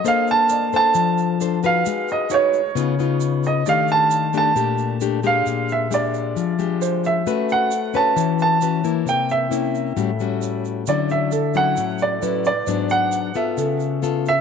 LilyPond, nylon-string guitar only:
\new Staff \with { instrumentName = "Nylon-string guitar" } { \time 4/4 \key bes \lydian \tempo 4 = 133 << { <d' a' c''>4. <d' a' c''>4. <d' a' c''>8 <ees' ges' b'>8~ | <ees' ges' b'>4 <ees' ges' ces''>8 r8 <ces' ees' f'>8 <ces' ees' f'>4. | <a d' g'>4. <a d' g'>8 <a d' g'>4 <a d' g'>8 <aes d' g'>8~ | <aes d' g'>4 <aes d' g'>4. <aes d' g'>4. |
<cis' fis' b'>4 r8 <cis' fis' b'>4. <cis' fis' b'>8 <bes e'>8~ | <bes e'>4 <bes des' e'>4 <g cis' fis'>8 <g cis' fis'>4. | \key d \major <fis cis' e'>4 r8 <fis cis' e'>4. <fis cis' e'>8 r8 | <fis b d'>4. <b f' a'>4. <b eis' a'>8 r8 | } \\ { bes2 f2 | aes2 des2 | ees2 bes,2 | bes,2 f2 |
a2 e2 | c2 a,2 | d2 a,2 | gis,2 cis2 | } >> }